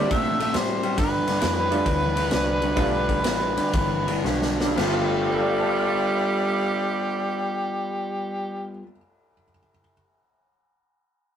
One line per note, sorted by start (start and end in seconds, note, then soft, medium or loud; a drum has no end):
0.00 0.35 G3 medium
0.00 0.35 A#3 medium
0.00 0.35 C4 medium
0.00 0.35 D4 medium
0.00 0.35 E4 medium
0.00 0.15 D5 loud
0.11 0.53 A#2 medium
0.11 0.38 C3 medium
0.11 0.38 A3 medium
0.11 0.42 E5 loud
0.11 kick loud
0.11 ride medium
0.39 0.52 C3 medium
0.39 0.53 A3 medium
0.39 0.58 E5 loud
0.39 ride medium
0.53 0.97 A2 medium
0.53 0.80 C3 medium
0.53 0.81 G3 medium
0.53 0.99 C5 loud
0.53 snare loud
0.53 ride medium
0.83 0.96 C3 medium
0.83 0.96 G3 medium
0.83 ride medium
0.97 1.24 G2 medium
0.97 1.40 G2 medium
0.97 1.24 D3 loud
0.97 4.20 B4 loud
0.97 kick loud
0.97 ride loud
1.27 1.40 G2 medium
1.27 1.41 D3 medium
1.27 snare soft
1.27 ride medium
1.41 1.85 F2 medium
1.41 1.68 G2 medium
1.41 1.68 E3 loud
1.41 snare loud
1.41 ride medium
1.71 1.84 G2 medium
1.71 1.84 D3 medium
1.71 1.84 G3 medium
1.71 1.84 A3 medium
1.71 1.85 B3 medium
1.71 1.85 D4 medium
1.71 1.85 F4 medium
1.71 ride medium
1.85 2.30 D2 medium
1.85 2.13 G2 medium
1.85 2.13 E3 medium
1.85 kick loud
1.85 ride loud
2.15 2.29 G2 medium
2.15 2.29 E3 medium
2.15 ride medium
2.30 2.76 C2 medium
2.30 2.58 G2 medium
2.30 2.58 D3 medium
2.30 snare loud
2.30 ride medium
2.62 2.75 G2 medium
2.62 2.75 D3 medium
2.62 ride medium
2.76 3.23 B1 medium
2.76 3.05 G2 medium
2.76 3.05 D3 medium
2.76 3.50 G3 medium
2.76 3.50 A3 medium
2.76 3.50 B3 medium
2.76 3.50 D4 medium
2.76 3.51 F4 medium
2.76 kick loud
2.76 ride medium
3.08 3.22 G2 medium
3.08 3.23 D3 medium
3.08 kick medium
3.08 ride medium
3.23 3.55 A1 medium
3.23 3.53 G2 medium
3.23 3.54 E3 medium
3.23 snare loud
3.23 ride loud
3.57 3.71 G2 medium
3.57 3.71 D3 medium
3.57 muted fingered electric bass stroke soft
3.57 ride medium
3.73 4.23 G1 medium
3.73 4.04 G2 medium
3.73 4.04 E3 medium
3.73 kick loud
3.73 ride loud
4.07 4.22 G2 medium
4.07 4.22 E3 medium
4.07 ride medium
4.24 4.75 B1 medium
4.24 4.56 G2 medium
4.24 4.56 D3 loud
4.24 snare medium
4.42 snare medium
4.60 4.75 G2 medium
4.60 4.76 D3 medium
4.60 snare medium
4.65 8.71 G2 medium
4.72 8.78 G3 medium
4.76 8.79 G1 medium
4.76 8.82 G3 medium
4.76 8.79 G3 loud
4.76 8.84 A3 medium
4.76 8.83 B3 loud
4.76 8.85 F4 medium
4.76 8.80 G4 loud
4.76 snare loud
4.76 crash medium
4.81 8.90 B3 medium
4.81 8.86 A4 loud
4.91 8.96 F4 medium
5.33 9.34 A4 soft
5.40 9.42 D5 soft
5.48 9.50 F5 soft
5.58 9.59 A5 soft
5.67 9.69 D6 soft
5.79 9.80 F6 soft
5.90 9.91 A6 soft